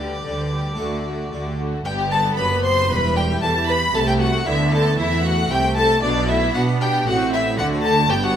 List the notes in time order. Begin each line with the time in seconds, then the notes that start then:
Already playing: D2 D3 G4 B4 D5
0.00 G3 G4 B4
0.26 D2 D3 G3 G4 C5
0.39 B4
0.53 G3 G4
0.67 A4
0.75 D3 A3 F#4 A4 B4
0.79 D2 D3 A3 F#4
0.92 A4
1.06 A3 F#4
1.20 G4
1.32 D2 D3 A3 F#4
1.45 G4
1.58 A3 F#4
1.73 A4
1.85 G1 G2 B3 G4 G5
1.99 D4
2.11 C4 A4 A5
2.25 D4
2.37 F#1 F#2 G4 B4 B5
2.52 D4
2.64 G4 C5 C6
2.78 B4
2.90 E1 E2 G3 B4 B5
3.05 E4
3.16 D4 G4 G5
3.31 E4
3.42 E2 E3 G4 A4 A5
3.56 E4
3.68 G4 B4 B5
3.82 B4
3.94 C2 C3 A3 A4 A5
4.07 A3 G4 G5
4.20 F#4 F#5
4.33 A3
4.45 D2 D3 B3 E4 E5
4.58 A3
4.71 E4 A4 A5
4.85 A3
4.98 E2 E3 A3 E4 E5
5.11 C4
5.24 B3 F#4 F#5
5.36 A3
5.50 C2 C3 A3 E4 G4 G5
5.63 A3
5.76 E4 A4 A5
5.90 A3
6.02 B1 B2 B3 D4 D5
6.16 B3
6.28 A3 E4 E5
6.41 B3
6.54 B2 B3 D4 F#4 F#5
6.68 B3
6.81 D4 G4 G5
6.94 G4
7.07 A1 A2 C4 F#4 F#5
7.21 C4
7.32 B3 E4 E5
7.46 C4
7.58 D2 D3 A3 D4 F#4 F#5
7.73 C4
7.84 D4 A4 A5
7.98 F#4
8.10 G1 G2 B3 G4 G5
8.23 D4 F#4 F#5